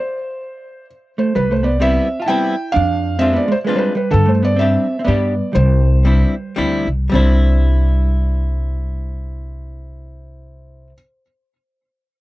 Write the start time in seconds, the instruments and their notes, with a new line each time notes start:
Already playing: felt piano C5
1.18 hollow-body jazz guitar A3, felt piano C5
1.35 upright bass C2, hollow-body jazz guitar G3, felt piano B4
1.51 hollow-body jazz guitar A3, felt piano C5
1.63 hollow-body jazz guitar B3, felt piano D5
1.80 hollow-body jazz guitar G3 B3 C4 E4, felt piano E5
2.20 hollow-body jazz guitar F4, felt piano A5
2.26 hollow-body jazz guitar G3 B3 C4 E4, felt piano G5
2.72 upright bass F2, hollow-body jazz guitar D4, felt piano F5
3.19 hollow-body jazz guitar G#3 C4 D4 F4, felt piano E5
3.33 hollow-body jazz guitar B3, felt piano D5
3.48 hollow-body jazz guitar G#3, felt piano C5
3.64 hollow-body jazz guitar G#3 C4 D4, felt piano B4
3.69 hollow-body jazz guitar G#3 F4
3.75 hollow-body jazz guitar G3, felt piano B4 C5
3.95 hollow-body jazz guitar G3, felt piano B4
4.11 upright bass G2, hollow-body jazz guitar D3, felt piano A4
4.26 hollow-body jazz guitar A3, felt piano C5
4.43 hollow-body jazz guitar B3, felt piano D5
4.56 hollow-body jazz guitar G3 C4, felt piano E5
4.61 hollow-body jazz guitar C4 D4 G4
4.99 hollow-body jazz guitar C4, felt piano E5
5.04 upright bass G2, hollow-body jazz guitar G3 B3 G4, felt piano D5
5.09 hollow-body jazz guitar D4
5.53 upright bass C2, hollow-body jazz guitar G3, felt piano C5
6.05 hollow-body jazz guitar G3 C4 D4 E4
6.56 upright bass D2, hollow-body jazz guitar G3 C4 D4 E4
6.87 upright bass C2
7.10 upright bass C2, hollow-body jazz guitar G3 C4
7.14 hollow-body jazz guitar D4 E4, felt piano C5